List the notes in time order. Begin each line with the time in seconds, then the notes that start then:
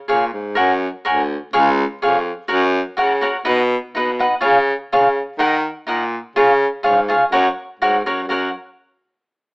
0.08 A#2 G#4 C#5 F5 G#5
0.33 G#2
0.55 F#2 A#4 C#5 F#5 G#5
1.05 D2 A#4 C#5 F#5 G#5
1.53 C#2 G#4 C#5 F5 G#5
2.01 F2 G#4 C#5 F5 G#5
2.48 F#2 F#4 A#4 C#5 F#5
2.97 C#3 F#4 A#4 C#5 F#5
3.21 F#4 A#4 C#5 F#5
3.45 B2 D#4 B4 D#5 F#5
3.94 B2 D#4 B4 D#5 F#5
4.19 D#4 B4 D#5 F#5
4.41 C#3 F4 G#4 C#5 F5
4.90 C#3 F4 G#4 C#5 F5
5.38 D#3 D#4 A#4 D#5 F#5
5.87 A#2 D#4 A#4 D#5 F#5
6.36 C#3 F4 G#4 C#5 F5
6.83 G#2 F4 G#4 C#5 F5
7.08 F4 G#4 C#5 F5
7.32 F#2 F#4 A#4 C#5 F#5
7.80 G#2 F#4 A#4 C#5 F#5
8.05 F#2 F#4 A#4 C#5 F#5
8.28 F#2 F#4 A#4 C#5 F#5